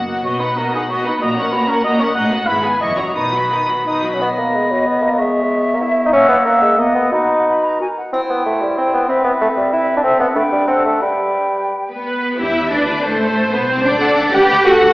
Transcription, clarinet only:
4.22 B3
6.14 A#3
6.78 B3
7.12 F#4
7.80 F#4
8.13 E4
9.09 C4
10.34 D4
11.02 G4

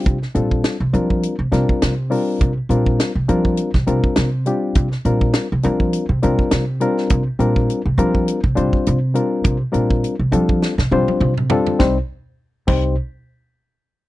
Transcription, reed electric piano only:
Already playing: G3 C4 D4 F4 G4
0.34 G3 C4 D4 F4 A4
0.93 G3 C4 D4 F4 A#4
1.52 G3 C4 D4 F4 A#4
2.10 G3 C4 D4 F4 A#4
2.70 G3 C4 D4 F4 A#4
3.28 G3 C4 D4 F4 A#4
3.87 G3 C4 D4 F4 A#4
4.46 G3 C4 D4 F4 G4
5.05 G3 C4 D4 F4 A#4
5.63 G3 C4 D4 F4 A#4
6.23 G3 C4 D4 F4 A#4
6.80 G3 C4 D4 F4 A#4
7.39 G3 C4 D4 F4 A#4
7.98 G3 C4 D4 F4 A#4
8.55 G3 C4 D4 F4 C5
9.14 G3 C4 D4 F4 A#4
9.72 G3 C4 D4 F4 A#4
10.32 G3 C4 D4 F4 A4
10.92 G3 C4 D4 F4 C5
11.50 G3 C4 D4 F4 A4
11.79 G3 C4 D#4 G4 C5
12.67 G3 C4 D#4 G4 C5

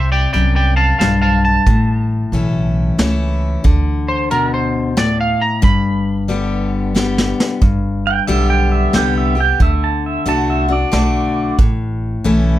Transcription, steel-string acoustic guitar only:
Already playing: C3
0.34 F#2
1.01 G2
1.67 A2
2.33 E3 A3 C#4 E4
2.98 E3 A3 C#4 E4
3.64 D3
4.31 B2
4.97 A2
5.62 G2
6.28 D3 G3 B3 G4
6.95 D3 G3 B3 G4
7.62 G2
8.27 D3 G3 B3 G4
8.93 D3 G3 B3 G4
9.35 B3 G4
9.60 D3
10.26 D3 A3 D4 F#4
10.68 D4 F#4
10.92 D3 A3 D4 F#4
11.59 A2
12.24 E3 A3 C#4 E4

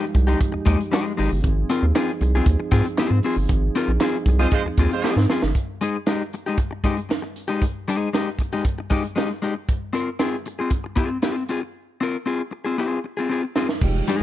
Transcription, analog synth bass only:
0.15 C2
0.54 D#2
0.66 D#2
1.19 G#1
1.32 G1
1.44 G#1
1.83 D#2
2.21 C2
2.46 D#2
2.72 G#2
3.11 G#2
3.37 G1
3.50 G#1
3.88 A#1
4.26 C2
4.66 D#2
4.78 D#2
5.16 G#2
5.43 G1
13.82 F1

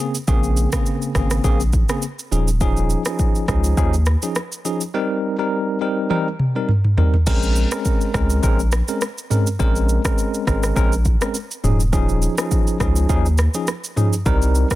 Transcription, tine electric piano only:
0.00 C#3 A#3 C4 G#4
0.27 C#3 A#3 C4 G#4
0.73 C#3 A#3 C4 G#4
1.15 C#3 A#3 C4 G#4
1.44 C#3 A#3 C4 G#4
1.89 C#3 A#3 C4 G#4
2.31 F3 C#4 D#4 G#4
2.61 F3 C#4 D#4 G#4
3.06 F3 C#4 D#4 G#4
3.48 F3 C#4 D#4 G#4
3.77 F3 C#4 D#4 G#4
4.22 F3 C#4 D#4 G#4
4.65 F3 C#4 D#4 G#4
4.94 G3 C4 D#4 A#4
5.39 G3 C4 D#4 A#4
5.81 G3 C4 D#4 A#4
6.10 G3 C4 D#4 A#4
6.55 G3 C4 D#4 A#4
6.97 G3 C4 D#4 A#4
7.27 G#3 C4 C#4 A#4
7.72 G#3 C4 C#4 A#4
8.14 G#3 C4 C#4 A#4
8.43 G#3 C4 C#4 A#4
8.88 G#3 C4 C#4 A#4
9.30 G#3 C4 C#4 A#4
9.59 G#3 C4 C#4 A#4
10.05 G#3 C4 C#4 A#4
10.47 G#3 C4 C#4 A#4
10.76 G#3 C4 C#4 A#4
11.21 G#3 C4 C#4 A#4
11.64 F3 C#4 D#4 G#4
11.93 F3 C#4 D#4 G#4
12.38 F3 C#4 D#4 G#4
12.80 F3 C#4 D#4 G#4
13.09 F3 C#4 D#4 G#4
13.54 F3 C#4 D#4 G#4
13.97 F3 C#4 D#4 G#4
14.26 G3 C4 D#4 A#4
14.71 G3 C4 D#4 A#4

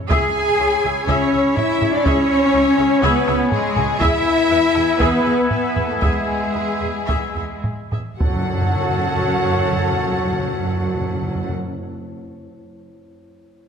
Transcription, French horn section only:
0.10 G#4
1.09 C#4
1.57 E4
1.94 D4
2.04 C#4
3.02 B3
3.51 G#3
4.00 E4
4.99 B3
5.51 B3
5.92 A3
6.03 G#3
8.19 F#4

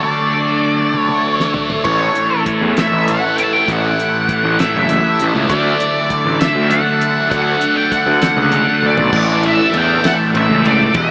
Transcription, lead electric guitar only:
0.03 D5
0.99 C#5
1.85 C#5
2.80 E5
3.09 F#5
3.40 G5
3.44 A5
3.53 G5
3.72 F#5
4.60 E5
5.50 D5
6.40 E5
6.71 F#5
7.30 F#5
7.77 G5
7.93 F#5
8.23 F#5
8.86 D5
9.17 D5
9.46 E5
9.78 G5
10.07 F#5
10.38 E5
10.67 D5
10.97 E5

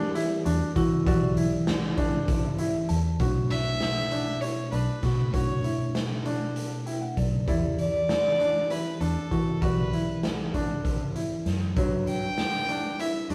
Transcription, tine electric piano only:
Already playing: E3 G3 E4 D5
1.05 E3 E4 G4 D5
2.59 E5
2.89 A5
3.19 B2 A3 D4 E4 C#5
5.32 B2 A3 D4 E4 C#5
6.86 G5
7.02 F#5
7.18 D5
7.46 E3 E4 G4 D5
9.61 E3 E4 G4 D5
11.75 G3 D4 B4

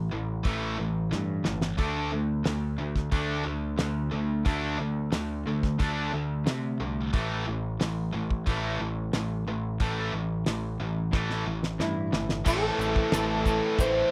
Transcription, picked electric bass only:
Already playing: A1
0.13 A1
0.45 A1
0.80 A1
1.13 G2
1.47 G1
1.79 D2
2.13 D2
2.45 D2
2.80 D2
3.12 D2
3.46 D2
3.80 D2
4.13 D2
4.46 D2
4.80 D2
5.13 D2
5.47 D2
5.80 D2
6.13 D2
6.47 C3
6.81 C2
7.14 A1
7.48 A1
7.81 A1
8.14 A1
8.47 A1
8.80 A1
9.14 A1
9.47 A1
9.80 A1
10.14 A1
10.47 A1
10.80 A1
11.13 A1
11.46 A1
11.80 G2
12.13 G1
12.46 A1
12.79 A1
13.13 A1
13.79 A1

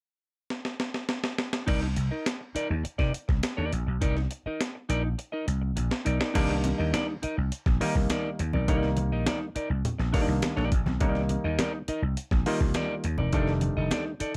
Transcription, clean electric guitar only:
1.67 D#4 A#4 D5
1.82 muted clean electric guitar stroke
1.97 muted clean electric guitar stroke
2.11 D#4 A#4 D#5
2.40 muted clean electric guitar stroke
2.55 D#4 A#4 D5
2.69 muted clean electric guitar stroke
2.84 muted clean electric guitar stroke
2.98 D#4 A#4 D5
3.14 muted clean electric guitar stroke
3.28 muted clean electric guitar stroke
3.43 muted clean electric guitar stroke
3.57 D#4 A#4 D5
3.72 muted clean electric guitar stroke
3.87 muted clean electric guitar stroke
4.01 D#4 A#4 D5
4.17 muted clean electric guitar stroke
4.32 muted clean electric guitar stroke
4.46 D#4 A#4 D#5
4.75 muted clean electric guitar stroke
4.89 D#4 A#4 D5
5.04 muted clean electric guitar stroke
5.18 muted clean electric guitar stroke
5.32 D#4 A#4 D#5
5.47 muted clean electric guitar stroke
5.62 muted clean electric guitar stroke
5.76 muted clean electric guitar stroke
5.91 muted clean electric guitar stroke
6.05 D#4 A#4 D5
6.19 D#4 A#4 D5
6.34 D#4 A#4 D5
6.64 muted clean electric guitar stroke
6.78 D#4 A#4 D#5
6.93 D#4 A#4 D5
7.08 muted clean electric guitar stroke
7.22 D#4 A#4 D#5
7.37 muted clean electric guitar stroke
7.66 muted clean electric guitar stroke
7.81 D#4 A#4 D#5
7.96 muted clean electric guitar stroke
8.10 D#4 A#4 D5
8.39 muted clean electric guitar stroke
8.54 D#4 A#4 D5
8.68 D#4 A#4 D5
8.98 muted clean electric guitar stroke
9.12 D#4 A#4 D#5
9.26 D#4 A#4 D5
9.41 muted clean electric guitar stroke
9.55 D#4 A#4 D5
9.70 muted clean electric guitar stroke
9.98 muted clean electric guitar stroke
10.13 D#4 A#4 D5
10.28 muted clean electric guitar stroke
10.43 muted clean electric guitar stroke
10.57 D#4 A#4 D5
10.71 muted clean electric guitar stroke
10.86 muted clean electric guitar stroke
11.00 D#4 A#4 D5
11.30 muted clean electric guitar stroke
11.44 D#4 A#4 D#5
11.59 D#4 A#4 D5
11.74 muted clean electric guitar stroke
11.88 D#4 A#4 D#5
12.03 muted clean electric guitar stroke
12.32 muted clean electric guitar stroke
12.46 D#4 A#4 D#5
12.62 muted clean electric guitar stroke
12.75 D#4 A#4 D5
13.04 muted clean electric guitar stroke
13.18 D#4 A#4 D5
13.33 D#4 A4 D5
13.62 muted clean electric guitar stroke
13.77 D#4 A4 D#5
13.92 D#4 A4 D5
14.06 muted clean electric guitar stroke
14.20 D#4 A4 D5

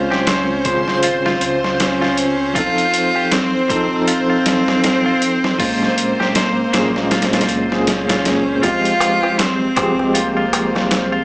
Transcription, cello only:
Already playing: C#4
1.82 C#4
2.57 F4
3.33 C4
4.09 C4
5.61 A#3
7.89 C#4
8.64 F4
9.40 C4
10.16 A#3

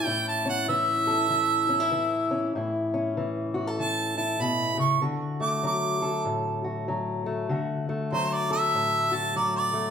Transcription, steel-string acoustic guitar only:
Already playing: E3 C#4 A4
0.06 A2 E4
0.46 C#4
0.69 E3
1.07 A4
1.30 E3
1.69 C#4
1.80 E4
1.92 E3
2.31 C#4
2.55 A2 E4
2.94 C#4
3.17 E3
3.54 F#4
3.67 A4
3.79 E3
4.18 E4
4.40 B2
4.77 C#3
5.02 D3 F#4
5.40 A3
5.63 F#3
6.02 A4
6.25 A2
6.64 F#4
6.88 F#3
7.26 A3
7.49 D3 F#4
7.89 A3
8.12 F#3
8.51 A4
8.74 A2
9.12 F#4
9.36 F#3
9.74 A3

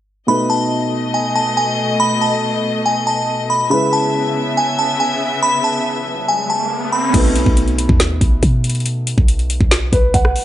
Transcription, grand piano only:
0.27 B2 A3 D#4 B4
3.70 C#3 G#3 E4 B4
7.13 B2 A3 D#4 B4
9.93 B4
10.14 F#5

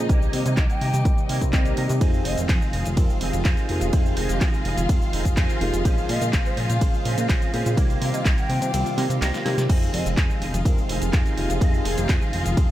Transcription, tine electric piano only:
0.09 C3 D#3 G3 A#3 C4
1.05 C3 D#3 G3 A#3 C4
1.41 C3 D#3 G3 A#3 C4
2.01 C3 D#3 F3 G#3 C4
2.97 C3 D#3 F3 G#3 C4
3.69 C3 D#3 F3 G#3 A#3
3.93 C3 D#3 F3 G#3 C4
4.89 C3 D#3 F3 G#3 C4
5.61 C3 D#3 F3 G#3 A#3
5.85 C#3 F3 G#3 A#3 C5
6.81 C#3 F3 G#3 A#3 C5
7.53 C#3 F3 G#3 A#3 C4
7.77 C3 D#3 G3 A#3 C4
8.73 C3 D#3 G3 A#3 C4
9.45 C3 D#3 G3 A#3 C4
9.69 C3 D#3 F3 C4
10.65 C3 D#3 F3 G#3 C4
11.37 C3 D#3 F3 G#3 A#3
11.61 C3 D#3 F3 G#3 C4
12.57 C3 D#3 F3 G#3 C4

